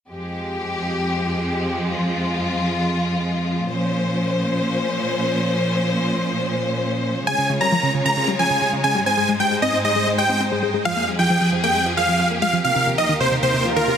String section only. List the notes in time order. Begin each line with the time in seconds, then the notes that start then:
0.11 F2 F3 G#3 G4
1.90 F4
3.69 A#2 F3 C#4 C5
7.27 C#3 G#3 F4 C#5
9.06 G#2 D#4 C5
10.85 F2 F3 G4 G#4
12.64 D#2 D#3 A#4